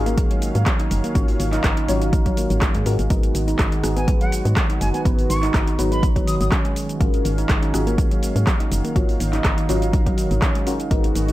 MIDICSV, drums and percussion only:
0, 0, Header, 1, 2, 480
1, 0, Start_track
1, 0, Tempo, 487805
1, 1135, Time_signature, 4, 2, 24, 8
1, 11142, End_track
2, 0, Start_track
2, 0, Title_t, "Drums"
2, 62, Note_on_c, 9, 42, 33
2, 70, Note_on_c, 9, 69, 40
2, 160, Note_off_c, 9, 42, 0
2, 168, Note_off_c, 9, 69, 0
2, 173, Note_on_c, 9, 36, 118
2, 173, Note_on_c, 9, 42, 75
2, 181, Note_on_c, 9, 69, 53
2, 271, Note_off_c, 9, 36, 0
2, 272, Note_off_c, 9, 42, 0
2, 279, Note_off_c, 9, 69, 0
2, 302, Note_on_c, 9, 42, 46
2, 310, Note_on_c, 9, 69, 24
2, 401, Note_off_c, 9, 42, 0
2, 409, Note_off_c, 9, 69, 0
2, 413, Note_on_c, 9, 46, 97
2, 421, Note_on_c, 9, 69, 90
2, 511, Note_off_c, 9, 46, 0
2, 519, Note_off_c, 9, 69, 0
2, 542, Note_on_c, 9, 42, 33
2, 550, Note_on_c, 9, 69, 38
2, 640, Note_off_c, 9, 42, 0
2, 648, Note_off_c, 9, 69, 0
2, 653, Note_on_c, 9, 36, 122
2, 654, Note_on_c, 9, 37, 98
2, 654, Note_on_c, 9, 39, 105
2, 654, Note_on_c, 9, 42, 75
2, 661, Note_on_c, 9, 69, 50
2, 752, Note_off_c, 9, 36, 0
2, 752, Note_off_c, 9, 37, 0
2, 752, Note_off_c, 9, 39, 0
2, 752, Note_off_c, 9, 42, 0
2, 760, Note_off_c, 9, 69, 0
2, 783, Note_on_c, 9, 42, 47
2, 790, Note_on_c, 9, 69, 24
2, 881, Note_off_c, 9, 42, 0
2, 889, Note_off_c, 9, 69, 0
2, 895, Note_on_c, 9, 46, 100
2, 903, Note_on_c, 9, 69, 93
2, 993, Note_off_c, 9, 46, 0
2, 1001, Note_off_c, 9, 69, 0
2, 1023, Note_on_c, 9, 42, 32
2, 1031, Note_on_c, 9, 69, 37
2, 1122, Note_off_c, 9, 42, 0
2, 1130, Note_off_c, 9, 69, 0
2, 1134, Note_on_c, 9, 36, 117
2, 1135, Note_on_c, 9, 42, 71
2, 1143, Note_on_c, 9, 69, 54
2, 1232, Note_off_c, 9, 36, 0
2, 1233, Note_off_c, 9, 42, 0
2, 1241, Note_off_c, 9, 69, 0
2, 1263, Note_on_c, 9, 46, 54
2, 1270, Note_on_c, 9, 69, 26
2, 1361, Note_off_c, 9, 46, 0
2, 1369, Note_off_c, 9, 69, 0
2, 1375, Note_on_c, 9, 46, 94
2, 1383, Note_on_c, 9, 69, 93
2, 1473, Note_off_c, 9, 46, 0
2, 1481, Note_off_c, 9, 69, 0
2, 1503, Note_on_c, 9, 39, 32
2, 1503, Note_on_c, 9, 42, 33
2, 1511, Note_on_c, 9, 69, 38
2, 1602, Note_off_c, 9, 39, 0
2, 1602, Note_off_c, 9, 42, 0
2, 1609, Note_off_c, 9, 69, 0
2, 1614, Note_on_c, 9, 36, 116
2, 1615, Note_on_c, 9, 37, 105
2, 1615, Note_on_c, 9, 39, 100
2, 1615, Note_on_c, 9, 42, 69
2, 1623, Note_on_c, 9, 69, 51
2, 1713, Note_off_c, 9, 36, 0
2, 1714, Note_off_c, 9, 37, 0
2, 1714, Note_off_c, 9, 39, 0
2, 1714, Note_off_c, 9, 42, 0
2, 1721, Note_off_c, 9, 69, 0
2, 1744, Note_on_c, 9, 42, 48
2, 1751, Note_on_c, 9, 69, 25
2, 1842, Note_off_c, 9, 42, 0
2, 1850, Note_off_c, 9, 69, 0
2, 1854, Note_on_c, 9, 46, 92
2, 1862, Note_on_c, 9, 69, 89
2, 1953, Note_off_c, 9, 46, 0
2, 1960, Note_off_c, 9, 69, 0
2, 1983, Note_on_c, 9, 42, 33
2, 1991, Note_on_c, 9, 69, 41
2, 2082, Note_off_c, 9, 42, 0
2, 2089, Note_off_c, 9, 69, 0
2, 2094, Note_on_c, 9, 36, 125
2, 2095, Note_on_c, 9, 42, 74
2, 2103, Note_on_c, 9, 69, 54
2, 2193, Note_off_c, 9, 36, 0
2, 2193, Note_off_c, 9, 42, 0
2, 2201, Note_off_c, 9, 69, 0
2, 2222, Note_on_c, 9, 36, 63
2, 2223, Note_on_c, 9, 42, 46
2, 2230, Note_on_c, 9, 69, 26
2, 2321, Note_off_c, 9, 36, 0
2, 2321, Note_off_c, 9, 42, 0
2, 2329, Note_off_c, 9, 69, 0
2, 2334, Note_on_c, 9, 46, 95
2, 2342, Note_on_c, 9, 69, 88
2, 2433, Note_off_c, 9, 46, 0
2, 2440, Note_off_c, 9, 69, 0
2, 2462, Note_on_c, 9, 42, 32
2, 2470, Note_on_c, 9, 69, 38
2, 2561, Note_off_c, 9, 42, 0
2, 2568, Note_off_c, 9, 69, 0
2, 2574, Note_on_c, 9, 36, 123
2, 2574, Note_on_c, 9, 37, 112
2, 2574, Note_on_c, 9, 39, 101
2, 2574, Note_on_c, 9, 42, 69
2, 2582, Note_on_c, 9, 69, 51
2, 2672, Note_off_c, 9, 37, 0
2, 2672, Note_off_c, 9, 39, 0
2, 2672, Note_off_c, 9, 42, 0
2, 2673, Note_off_c, 9, 36, 0
2, 2680, Note_off_c, 9, 69, 0
2, 2702, Note_on_c, 9, 42, 46
2, 2709, Note_on_c, 9, 69, 25
2, 2800, Note_off_c, 9, 42, 0
2, 2808, Note_off_c, 9, 69, 0
2, 2814, Note_on_c, 9, 46, 102
2, 2821, Note_on_c, 9, 69, 97
2, 2912, Note_off_c, 9, 46, 0
2, 2920, Note_off_c, 9, 69, 0
2, 2942, Note_on_c, 9, 42, 33
2, 2950, Note_on_c, 9, 69, 39
2, 3040, Note_off_c, 9, 42, 0
2, 3048, Note_off_c, 9, 69, 0
2, 3053, Note_on_c, 9, 42, 69
2, 3054, Note_on_c, 9, 36, 118
2, 3061, Note_on_c, 9, 69, 56
2, 3152, Note_off_c, 9, 36, 0
2, 3152, Note_off_c, 9, 42, 0
2, 3159, Note_off_c, 9, 69, 0
2, 3182, Note_on_c, 9, 42, 44
2, 3190, Note_on_c, 9, 69, 26
2, 3281, Note_off_c, 9, 42, 0
2, 3288, Note_off_c, 9, 69, 0
2, 3295, Note_on_c, 9, 46, 97
2, 3302, Note_on_c, 9, 69, 96
2, 3393, Note_off_c, 9, 46, 0
2, 3401, Note_off_c, 9, 69, 0
2, 3423, Note_on_c, 9, 42, 31
2, 3431, Note_on_c, 9, 69, 39
2, 3521, Note_off_c, 9, 42, 0
2, 3529, Note_off_c, 9, 69, 0
2, 3534, Note_on_c, 9, 36, 118
2, 3534, Note_on_c, 9, 37, 110
2, 3534, Note_on_c, 9, 39, 97
2, 3534, Note_on_c, 9, 42, 63
2, 3541, Note_on_c, 9, 69, 52
2, 3632, Note_off_c, 9, 36, 0
2, 3632, Note_off_c, 9, 37, 0
2, 3632, Note_off_c, 9, 39, 0
2, 3632, Note_off_c, 9, 42, 0
2, 3640, Note_off_c, 9, 69, 0
2, 3663, Note_on_c, 9, 42, 44
2, 3670, Note_on_c, 9, 69, 26
2, 3761, Note_off_c, 9, 42, 0
2, 3769, Note_off_c, 9, 69, 0
2, 3774, Note_on_c, 9, 37, 65
2, 3774, Note_on_c, 9, 46, 96
2, 3782, Note_on_c, 9, 69, 92
2, 3873, Note_off_c, 9, 37, 0
2, 3873, Note_off_c, 9, 46, 0
2, 3880, Note_off_c, 9, 69, 0
2, 3902, Note_on_c, 9, 42, 31
2, 3910, Note_on_c, 9, 69, 43
2, 4001, Note_off_c, 9, 42, 0
2, 4008, Note_off_c, 9, 69, 0
2, 4013, Note_on_c, 9, 36, 126
2, 4013, Note_on_c, 9, 42, 72
2, 4021, Note_on_c, 9, 69, 55
2, 4112, Note_off_c, 9, 36, 0
2, 4112, Note_off_c, 9, 42, 0
2, 4119, Note_off_c, 9, 69, 0
2, 4142, Note_on_c, 9, 42, 43
2, 4150, Note_on_c, 9, 69, 26
2, 4241, Note_off_c, 9, 42, 0
2, 4248, Note_off_c, 9, 69, 0
2, 4254, Note_on_c, 9, 46, 95
2, 4262, Note_on_c, 9, 69, 96
2, 4352, Note_off_c, 9, 46, 0
2, 4360, Note_off_c, 9, 69, 0
2, 4382, Note_on_c, 9, 42, 31
2, 4390, Note_on_c, 9, 69, 40
2, 4481, Note_off_c, 9, 42, 0
2, 4489, Note_off_c, 9, 69, 0
2, 4493, Note_on_c, 9, 36, 121
2, 4494, Note_on_c, 9, 37, 115
2, 4494, Note_on_c, 9, 39, 102
2, 4494, Note_on_c, 9, 42, 65
2, 4501, Note_on_c, 9, 69, 50
2, 4592, Note_off_c, 9, 36, 0
2, 4592, Note_off_c, 9, 37, 0
2, 4592, Note_off_c, 9, 39, 0
2, 4592, Note_off_c, 9, 42, 0
2, 4600, Note_off_c, 9, 69, 0
2, 4622, Note_on_c, 9, 42, 42
2, 4630, Note_on_c, 9, 69, 27
2, 4721, Note_off_c, 9, 42, 0
2, 4728, Note_off_c, 9, 69, 0
2, 4734, Note_on_c, 9, 46, 96
2, 4742, Note_on_c, 9, 69, 96
2, 4832, Note_off_c, 9, 46, 0
2, 4840, Note_off_c, 9, 69, 0
2, 4863, Note_on_c, 9, 42, 32
2, 4871, Note_on_c, 9, 69, 38
2, 4961, Note_off_c, 9, 42, 0
2, 4969, Note_off_c, 9, 69, 0
2, 4973, Note_on_c, 9, 36, 127
2, 4975, Note_on_c, 9, 42, 67
2, 4982, Note_on_c, 9, 69, 55
2, 5072, Note_off_c, 9, 36, 0
2, 5073, Note_off_c, 9, 42, 0
2, 5081, Note_off_c, 9, 69, 0
2, 5103, Note_on_c, 9, 46, 54
2, 5110, Note_on_c, 9, 69, 28
2, 5201, Note_off_c, 9, 46, 0
2, 5209, Note_off_c, 9, 69, 0
2, 5215, Note_on_c, 9, 46, 94
2, 5223, Note_on_c, 9, 69, 100
2, 5313, Note_off_c, 9, 46, 0
2, 5321, Note_off_c, 9, 69, 0
2, 5343, Note_on_c, 9, 39, 30
2, 5343, Note_on_c, 9, 42, 29
2, 5351, Note_on_c, 9, 69, 41
2, 5441, Note_off_c, 9, 39, 0
2, 5441, Note_off_c, 9, 42, 0
2, 5449, Note_off_c, 9, 69, 0
2, 5453, Note_on_c, 9, 36, 127
2, 5455, Note_on_c, 9, 37, 113
2, 5455, Note_on_c, 9, 39, 95
2, 5455, Note_on_c, 9, 42, 64
2, 5462, Note_on_c, 9, 69, 55
2, 5552, Note_off_c, 9, 36, 0
2, 5553, Note_off_c, 9, 37, 0
2, 5553, Note_off_c, 9, 39, 0
2, 5553, Note_off_c, 9, 42, 0
2, 5561, Note_off_c, 9, 69, 0
2, 5584, Note_on_c, 9, 42, 44
2, 5591, Note_on_c, 9, 69, 28
2, 5682, Note_off_c, 9, 42, 0
2, 5690, Note_off_c, 9, 69, 0
2, 5695, Note_on_c, 9, 46, 94
2, 5703, Note_on_c, 9, 69, 96
2, 5794, Note_off_c, 9, 46, 0
2, 5801, Note_off_c, 9, 69, 0
2, 5824, Note_on_c, 9, 42, 32
2, 5832, Note_on_c, 9, 69, 44
2, 5922, Note_off_c, 9, 42, 0
2, 5930, Note_off_c, 9, 69, 0
2, 5933, Note_on_c, 9, 36, 124
2, 5935, Note_on_c, 9, 42, 72
2, 5943, Note_on_c, 9, 69, 56
2, 6032, Note_off_c, 9, 36, 0
2, 6033, Note_off_c, 9, 42, 0
2, 6041, Note_off_c, 9, 69, 0
2, 6062, Note_on_c, 9, 36, 70
2, 6063, Note_on_c, 9, 42, 43
2, 6071, Note_on_c, 9, 69, 27
2, 6160, Note_off_c, 9, 36, 0
2, 6162, Note_off_c, 9, 42, 0
2, 6169, Note_off_c, 9, 69, 0
2, 6174, Note_on_c, 9, 46, 92
2, 6182, Note_on_c, 9, 69, 101
2, 6273, Note_off_c, 9, 46, 0
2, 6280, Note_off_c, 9, 69, 0
2, 6304, Note_on_c, 9, 42, 30
2, 6311, Note_on_c, 9, 69, 43
2, 6402, Note_off_c, 9, 42, 0
2, 6410, Note_off_c, 9, 69, 0
2, 6414, Note_on_c, 9, 36, 126
2, 6415, Note_on_c, 9, 37, 108
2, 6415, Note_on_c, 9, 39, 99
2, 6415, Note_on_c, 9, 42, 62
2, 6423, Note_on_c, 9, 69, 56
2, 6512, Note_off_c, 9, 36, 0
2, 6513, Note_off_c, 9, 37, 0
2, 6513, Note_off_c, 9, 39, 0
2, 6513, Note_off_c, 9, 42, 0
2, 6521, Note_off_c, 9, 69, 0
2, 6543, Note_on_c, 9, 42, 43
2, 6551, Note_on_c, 9, 69, 28
2, 6641, Note_off_c, 9, 42, 0
2, 6649, Note_off_c, 9, 69, 0
2, 6655, Note_on_c, 9, 46, 93
2, 6662, Note_on_c, 9, 69, 99
2, 6753, Note_off_c, 9, 46, 0
2, 6761, Note_off_c, 9, 69, 0
2, 6783, Note_on_c, 9, 42, 30
2, 6791, Note_on_c, 9, 69, 41
2, 6882, Note_off_c, 9, 42, 0
2, 6889, Note_off_c, 9, 69, 0
2, 6894, Note_on_c, 9, 36, 127
2, 6894, Note_on_c, 9, 42, 66
2, 6902, Note_on_c, 9, 69, 56
2, 6992, Note_off_c, 9, 36, 0
2, 6993, Note_off_c, 9, 42, 0
2, 7001, Note_off_c, 9, 69, 0
2, 7024, Note_on_c, 9, 42, 43
2, 7031, Note_on_c, 9, 69, 28
2, 7122, Note_off_c, 9, 42, 0
2, 7130, Note_off_c, 9, 69, 0
2, 7135, Note_on_c, 9, 46, 92
2, 7142, Note_on_c, 9, 69, 99
2, 7233, Note_off_c, 9, 46, 0
2, 7241, Note_off_c, 9, 69, 0
2, 7263, Note_on_c, 9, 42, 30
2, 7271, Note_on_c, 9, 69, 42
2, 7361, Note_off_c, 9, 42, 0
2, 7369, Note_off_c, 9, 69, 0
2, 7374, Note_on_c, 9, 36, 127
2, 7375, Note_on_c, 9, 37, 108
2, 7375, Note_on_c, 9, 39, 99
2, 7375, Note_on_c, 9, 42, 65
2, 7383, Note_on_c, 9, 69, 57
2, 7472, Note_off_c, 9, 36, 0
2, 7473, Note_off_c, 9, 37, 0
2, 7473, Note_off_c, 9, 39, 0
2, 7473, Note_off_c, 9, 42, 0
2, 7481, Note_off_c, 9, 69, 0
2, 7503, Note_on_c, 9, 42, 41
2, 7511, Note_on_c, 9, 69, 29
2, 7602, Note_off_c, 9, 42, 0
2, 7610, Note_off_c, 9, 69, 0
2, 7615, Note_on_c, 9, 37, 64
2, 7615, Note_on_c, 9, 46, 86
2, 7623, Note_on_c, 9, 69, 100
2, 7713, Note_off_c, 9, 37, 0
2, 7713, Note_off_c, 9, 46, 0
2, 7721, Note_off_c, 9, 69, 0
2, 7744, Note_on_c, 9, 42, 31
2, 7752, Note_on_c, 9, 69, 44
2, 7842, Note_off_c, 9, 42, 0
2, 7850, Note_off_c, 9, 69, 0
2, 7854, Note_on_c, 9, 36, 127
2, 7855, Note_on_c, 9, 42, 70
2, 7863, Note_on_c, 9, 69, 58
2, 7953, Note_off_c, 9, 36, 0
2, 7954, Note_off_c, 9, 42, 0
2, 7962, Note_off_c, 9, 69, 0
2, 7984, Note_on_c, 9, 42, 42
2, 7992, Note_on_c, 9, 69, 26
2, 8083, Note_off_c, 9, 42, 0
2, 8090, Note_off_c, 9, 69, 0
2, 8096, Note_on_c, 9, 46, 92
2, 8103, Note_on_c, 9, 69, 103
2, 8194, Note_off_c, 9, 46, 0
2, 8202, Note_off_c, 9, 69, 0
2, 8224, Note_on_c, 9, 42, 30
2, 8232, Note_on_c, 9, 69, 41
2, 8323, Note_off_c, 9, 42, 0
2, 8330, Note_off_c, 9, 69, 0
2, 8335, Note_on_c, 9, 36, 127
2, 8336, Note_on_c, 9, 37, 109
2, 8336, Note_on_c, 9, 39, 101
2, 8336, Note_on_c, 9, 42, 65
2, 8343, Note_on_c, 9, 69, 56
2, 8433, Note_off_c, 9, 36, 0
2, 8434, Note_off_c, 9, 37, 0
2, 8434, Note_off_c, 9, 39, 0
2, 8434, Note_off_c, 9, 42, 0
2, 8442, Note_off_c, 9, 69, 0
2, 8465, Note_on_c, 9, 42, 45
2, 8473, Note_on_c, 9, 69, 26
2, 8563, Note_off_c, 9, 42, 0
2, 8571, Note_off_c, 9, 69, 0
2, 8577, Note_on_c, 9, 46, 92
2, 8584, Note_on_c, 9, 69, 106
2, 8675, Note_off_c, 9, 46, 0
2, 8683, Note_off_c, 9, 69, 0
2, 8705, Note_on_c, 9, 42, 31
2, 8712, Note_on_c, 9, 69, 42
2, 8803, Note_off_c, 9, 42, 0
2, 8811, Note_off_c, 9, 69, 0
2, 8815, Note_on_c, 9, 36, 126
2, 8816, Note_on_c, 9, 42, 65
2, 8824, Note_on_c, 9, 69, 55
2, 8913, Note_off_c, 9, 36, 0
2, 8914, Note_off_c, 9, 42, 0
2, 8922, Note_off_c, 9, 69, 0
2, 8944, Note_on_c, 9, 46, 50
2, 8951, Note_on_c, 9, 69, 28
2, 9042, Note_off_c, 9, 46, 0
2, 9050, Note_off_c, 9, 69, 0
2, 9056, Note_on_c, 9, 46, 87
2, 9063, Note_on_c, 9, 69, 103
2, 9154, Note_off_c, 9, 46, 0
2, 9162, Note_off_c, 9, 69, 0
2, 9183, Note_on_c, 9, 39, 33
2, 9183, Note_on_c, 9, 42, 31
2, 9191, Note_on_c, 9, 69, 40
2, 9282, Note_off_c, 9, 39, 0
2, 9282, Note_off_c, 9, 42, 0
2, 9290, Note_off_c, 9, 69, 0
2, 9295, Note_on_c, 9, 36, 124
2, 9295, Note_on_c, 9, 37, 107
2, 9295, Note_on_c, 9, 39, 105
2, 9295, Note_on_c, 9, 42, 64
2, 9303, Note_on_c, 9, 69, 53
2, 9393, Note_off_c, 9, 36, 0
2, 9393, Note_off_c, 9, 37, 0
2, 9393, Note_off_c, 9, 39, 0
2, 9393, Note_off_c, 9, 42, 0
2, 9401, Note_off_c, 9, 69, 0
2, 9424, Note_on_c, 9, 42, 42
2, 9432, Note_on_c, 9, 69, 28
2, 9523, Note_off_c, 9, 42, 0
2, 9531, Note_off_c, 9, 69, 0
2, 9535, Note_on_c, 9, 46, 87
2, 9543, Note_on_c, 9, 69, 95
2, 9634, Note_off_c, 9, 46, 0
2, 9641, Note_off_c, 9, 69, 0
2, 9664, Note_on_c, 9, 42, 31
2, 9672, Note_on_c, 9, 69, 44
2, 9762, Note_off_c, 9, 42, 0
2, 9770, Note_off_c, 9, 69, 0
2, 9775, Note_on_c, 9, 36, 127
2, 9775, Note_on_c, 9, 42, 70
2, 9783, Note_on_c, 9, 69, 58
2, 9873, Note_off_c, 9, 36, 0
2, 9874, Note_off_c, 9, 42, 0
2, 9881, Note_off_c, 9, 69, 0
2, 9903, Note_on_c, 9, 36, 69
2, 9904, Note_on_c, 9, 42, 43
2, 9912, Note_on_c, 9, 69, 26
2, 10002, Note_off_c, 9, 36, 0
2, 10003, Note_off_c, 9, 42, 0
2, 10010, Note_off_c, 9, 69, 0
2, 10015, Note_on_c, 9, 46, 87
2, 10022, Note_on_c, 9, 69, 97
2, 10113, Note_off_c, 9, 46, 0
2, 10121, Note_off_c, 9, 69, 0
2, 10144, Note_on_c, 9, 42, 31
2, 10152, Note_on_c, 9, 69, 42
2, 10242, Note_off_c, 9, 42, 0
2, 10250, Note_off_c, 9, 69, 0
2, 10255, Note_on_c, 9, 36, 126
2, 10255, Note_on_c, 9, 37, 101
2, 10255, Note_on_c, 9, 39, 107
2, 10255, Note_on_c, 9, 42, 68
2, 10263, Note_on_c, 9, 69, 53
2, 10353, Note_off_c, 9, 36, 0
2, 10354, Note_off_c, 9, 37, 0
2, 10354, Note_off_c, 9, 39, 0
2, 10354, Note_off_c, 9, 42, 0
2, 10361, Note_off_c, 9, 69, 0
2, 10384, Note_on_c, 9, 42, 44
2, 10392, Note_on_c, 9, 69, 27
2, 10483, Note_off_c, 9, 42, 0
2, 10490, Note_off_c, 9, 69, 0
2, 10496, Note_on_c, 9, 46, 90
2, 10504, Note_on_c, 9, 69, 100
2, 10595, Note_off_c, 9, 46, 0
2, 10602, Note_off_c, 9, 69, 0
2, 10624, Note_on_c, 9, 42, 31
2, 10632, Note_on_c, 9, 69, 41
2, 10723, Note_off_c, 9, 42, 0
2, 10730, Note_off_c, 9, 69, 0
2, 10735, Note_on_c, 9, 36, 117
2, 10736, Note_on_c, 9, 42, 70
2, 10743, Note_on_c, 9, 69, 52
2, 10833, Note_off_c, 9, 36, 0
2, 10834, Note_off_c, 9, 42, 0
2, 10842, Note_off_c, 9, 69, 0
2, 10865, Note_on_c, 9, 42, 47
2, 10872, Note_on_c, 9, 69, 27
2, 10963, Note_off_c, 9, 42, 0
2, 10971, Note_off_c, 9, 69, 0
2, 10976, Note_on_c, 9, 46, 91
2, 10984, Note_on_c, 9, 69, 95
2, 11075, Note_off_c, 9, 46, 0
2, 11082, Note_off_c, 9, 69, 0
2, 11104, Note_on_c, 9, 42, 32
2, 11112, Note_on_c, 9, 69, 39
2, 11142, Note_off_c, 9, 42, 0
2, 11142, Note_off_c, 9, 69, 0
2, 11142, End_track
0, 0, End_of_file